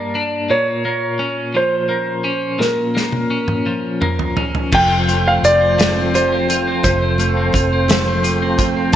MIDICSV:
0, 0, Header, 1, 7, 480
1, 0, Start_track
1, 0, Key_signature, -1, "major"
1, 0, Tempo, 703400
1, 339, Time_signature, 6, 3, 24, 8
1, 6114, End_track
2, 0, Start_track
2, 0, Title_t, "Grand piano"
2, 0, Program_c, 0, 0
2, 0, Note_on_c, 0, 74, 66
2, 346, Note_on_c, 0, 73, 70
2, 368, Note_off_c, 0, 74, 0
2, 1068, Note_on_c, 0, 72, 69
2, 1078, Note_off_c, 0, 73, 0
2, 1752, Note_off_c, 0, 72, 0
2, 1776, Note_on_c, 0, 70, 59
2, 2713, Note_off_c, 0, 70, 0
2, 3239, Note_on_c, 0, 79, 98
2, 3600, Note_on_c, 0, 77, 77
2, 3605, Note_off_c, 0, 79, 0
2, 3634, Note_off_c, 0, 77, 0
2, 3717, Note_on_c, 0, 74, 111
2, 4196, Note_on_c, 0, 72, 85
2, 4209, Note_off_c, 0, 74, 0
2, 4657, Note_off_c, 0, 72, 0
2, 4667, Note_on_c, 0, 72, 75
2, 5595, Note_off_c, 0, 72, 0
2, 6114, End_track
3, 0, Start_track
3, 0, Title_t, "Tonewheel organ"
3, 0, Program_c, 1, 16
3, 3223, Note_on_c, 1, 65, 60
3, 3223, Note_on_c, 1, 79, 67
3, 3224, Note_on_c, 1, 69, 51
3, 3228, Note_on_c, 1, 72, 53
3, 6072, Note_off_c, 1, 69, 0
3, 6074, Note_off_c, 1, 72, 0
3, 6114, Note_off_c, 1, 65, 0
3, 6114, Note_off_c, 1, 79, 0
3, 6114, End_track
4, 0, Start_track
4, 0, Title_t, "Clean electric guitar"
4, 0, Program_c, 2, 27
4, 0, Note_on_c, 2, 43, 57
4, 0, Note_on_c, 2, 55, 43
4, 0, Note_on_c, 2, 58, 42
4, 0, Note_on_c, 2, 62, 51
4, 95, Note_off_c, 2, 62, 0
4, 103, Note_on_c, 2, 62, 46
4, 340, Note_off_c, 2, 43, 0
4, 340, Note_on_c, 2, 46, 61
4, 388, Note_off_c, 2, 55, 0
4, 388, Note_off_c, 2, 62, 0
4, 578, Note_off_c, 2, 58, 0
4, 580, Note_on_c, 2, 58, 40
4, 814, Note_on_c, 2, 61, 52
4, 1054, Note_on_c, 2, 53, 46
4, 1280, Note_off_c, 2, 58, 0
4, 1288, Note_on_c, 2, 58, 40
4, 1521, Note_off_c, 2, 61, 0
4, 1529, Note_on_c, 2, 61, 49
4, 1758, Note_off_c, 2, 46, 0
4, 1767, Note_on_c, 2, 46, 57
4, 2005, Note_off_c, 2, 58, 0
4, 2013, Note_on_c, 2, 58, 40
4, 2247, Note_off_c, 2, 61, 0
4, 2256, Note_on_c, 2, 61, 46
4, 2496, Note_off_c, 2, 53, 0
4, 2499, Note_on_c, 2, 53, 41
4, 2730, Note_off_c, 2, 58, 0
4, 2738, Note_on_c, 2, 58, 38
4, 2975, Note_off_c, 2, 61, 0
4, 2983, Note_on_c, 2, 61, 43
4, 3220, Note_off_c, 2, 46, 0
4, 3225, Note_off_c, 2, 53, 0
4, 3225, Note_on_c, 2, 53, 73
4, 3271, Note_off_c, 2, 58, 0
4, 3273, Note_off_c, 2, 61, 0
4, 3346, Note_on_c, 2, 60, 57
4, 3470, Note_on_c, 2, 65, 51
4, 3585, Note_off_c, 2, 60, 0
4, 3593, Note_on_c, 2, 60, 53
4, 3709, Note_off_c, 2, 65, 0
4, 3712, Note_on_c, 2, 65, 55
4, 3818, Note_off_c, 2, 60, 0
4, 3826, Note_on_c, 2, 60, 51
4, 3945, Note_off_c, 2, 53, 0
4, 3948, Note_on_c, 2, 53, 74
4, 4065, Note_off_c, 2, 60, 0
4, 4073, Note_on_c, 2, 60, 54
4, 4190, Note_off_c, 2, 65, 0
4, 4193, Note_on_c, 2, 65, 56
4, 4307, Note_off_c, 2, 60, 0
4, 4315, Note_on_c, 2, 60, 57
4, 4433, Note_off_c, 2, 65, 0
4, 4436, Note_on_c, 2, 65, 57
4, 4546, Note_off_c, 2, 60, 0
4, 4554, Note_on_c, 2, 60, 55
4, 4672, Note_off_c, 2, 53, 0
4, 4675, Note_on_c, 2, 53, 73
4, 4783, Note_off_c, 2, 60, 0
4, 4791, Note_on_c, 2, 60, 57
4, 4906, Note_off_c, 2, 65, 0
4, 4909, Note_on_c, 2, 65, 50
4, 5021, Note_off_c, 2, 60, 0
4, 5029, Note_on_c, 2, 60, 55
4, 5147, Note_off_c, 2, 65, 0
4, 5149, Note_on_c, 2, 65, 62
4, 5264, Note_off_c, 2, 60, 0
4, 5272, Note_on_c, 2, 60, 54
4, 5388, Note_off_c, 2, 53, 0
4, 5391, Note_on_c, 2, 53, 74
4, 5501, Note_off_c, 2, 60, 0
4, 5509, Note_on_c, 2, 60, 61
4, 5620, Note_off_c, 2, 65, 0
4, 5623, Note_on_c, 2, 65, 57
4, 5739, Note_off_c, 2, 60, 0
4, 5748, Note_on_c, 2, 60, 65
4, 5863, Note_off_c, 2, 65, 0
4, 5866, Note_on_c, 2, 65, 55
4, 5975, Note_off_c, 2, 60, 0
4, 5983, Note_on_c, 2, 60, 57
4, 6114, Note_off_c, 2, 53, 0
4, 6114, Note_off_c, 2, 60, 0
4, 6114, Note_off_c, 2, 65, 0
4, 6114, End_track
5, 0, Start_track
5, 0, Title_t, "Steel-string acoustic guitar"
5, 0, Program_c, 3, 25
5, 3220, Note_on_c, 3, 57, 70
5, 3458, Note_off_c, 3, 57, 0
5, 3467, Note_on_c, 3, 57, 52
5, 3709, Note_on_c, 3, 60, 50
5, 3937, Note_off_c, 3, 57, 0
5, 3945, Note_on_c, 3, 57, 67
5, 4189, Note_on_c, 3, 67, 58
5, 4418, Note_off_c, 3, 60, 0
5, 4426, Note_on_c, 3, 60, 53
5, 4654, Note_off_c, 3, 57, 0
5, 4663, Note_on_c, 3, 57, 73
5, 4892, Note_off_c, 3, 57, 0
5, 4900, Note_on_c, 3, 57, 60
5, 5127, Note_off_c, 3, 60, 0
5, 5135, Note_on_c, 3, 60, 52
5, 5371, Note_off_c, 3, 57, 0
5, 5379, Note_on_c, 3, 57, 70
5, 5615, Note_off_c, 3, 67, 0
5, 5617, Note_on_c, 3, 67, 63
5, 5846, Note_off_c, 3, 60, 0
5, 5854, Note_on_c, 3, 60, 62
5, 6089, Note_on_c, 3, 53, 75
5, 6114, Note_off_c, 3, 53, 0
5, 6114, Note_off_c, 3, 57, 0
5, 6114, Note_off_c, 3, 60, 0
5, 6114, Note_off_c, 3, 67, 0
5, 6114, End_track
6, 0, Start_track
6, 0, Title_t, "Fingered electric bass"
6, 0, Program_c, 4, 33
6, 3222, Note_on_c, 4, 29, 99
6, 3680, Note_off_c, 4, 29, 0
6, 3704, Note_on_c, 4, 29, 77
6, 4640, Note_off_c, 4, 29, 0
6, 4667, Note_on_c, 4, 29, 109
6, 5118, Note_off_c, 4, 29, 0
6, 5142, Note_on_c, 4, 29, 82
6, 6070, Note_off_c, 4, 29, 0
6, 6114, End_track
7, 0, Start_track
7, 0, Title_t, "Drums"
7, 1781, Note_on_c, 9, 38, 39
7, 1850, Note_off_c, 9, 38, 0
7, 2025, Note_on_c, 9, 38, 45
7, 2093, Note_off_c, 9, 38, 0
7, 2133, Note_on_c, 9, 48, 44
7, 2201, Note_off_c, 9, 48, 0
7, 2374, Note_on_c, 9, 47, 49
7, 2442, Note_off_c, 9, 47, 0
7, 2741, Note_on_c, 9, 45, 64
7, 2809, Note_off_c, 9, 45, 0
7, 2861, Note_on_c, 9, 43, 59
7, 2929, Note_off_c, 9, 43, 0
7, 2980, Note_on_c, 9, 43, 72
7, 3048, Note_off_c, 9, 43, 0
7, 3103, Note_on_c, 9, 43, 59
7, 3171, Note_off_c, 9, 43, 0
7, 3225, Note_on_c, 9, 36, 98
7, 3225, Note_on_c, 9, 49, 88
7, 3293, Note_off_c, 9, 36, 0
7, 3293, Note_off_c, 9, 49, 0
7, 3470, Note_on_c, 9, 42, 42
7, 3539, Note_off_c, 9, 42, 0
7, 3714, Note_on_c, 9, 42, 58
7, 3782, Note_off_c, 9, 42, 0
7, 3954, Note_on_c, 9, 42, 80
7, 3962, Note_on_c, 9, 38, 106
7, 4022, Note_off_c, 9, 42, 0
7, 4030, Note_off_c, 9, 38, 0
7, 4197, Note_on_c, 9, 42, 57
7, 4265, Note_off_c, 9, 42, 0
7, 4434, Note_on_c, 9, 42, 78
7, 4503, Note_off_c, 9, 42, 0
7, 4669, Note_on_c, 9, 36, 101
7, 4669, Note_on_c, 9, 42, 87
7, 4737, Note_off_c, 9, 36, 0
7, 4738, Note_off_c, 9, 42, 0
7, 4911, Note_on_c, 9, 42, 43
7, 4979, Note_off_c, 9, 42, 0
7, 5145, Note_on_c, 9, 36, 83
7, 5153, Note_on_c, 9, 42, 60
7, 5213, Note_off_c, 9, 36, 0
7, 5221, Note_off_c, 9, 42, 0
7, 5387, Note_on_c, 9, 42, 84
7, 5396, Note_on_c, 9, 38, 109
7, 5456, Note_off_c, 9, 42, 0
7, 5464, Note_off_c, 9, 38, 0
7, 5626, Note_on_c, 9, 42, 57
7, 5694, Note_off_c, 9, 42, 0
7, 5859, Note_on_c, 9, 36, 93
7, 5862, Note_on_c, 9, 42, 79
7, 5928, Note_off_c, 9, 36, 0
7, 5931, Note_off_c, 9, 42, 0
7, 6114, End_track
0, 0, End_of_file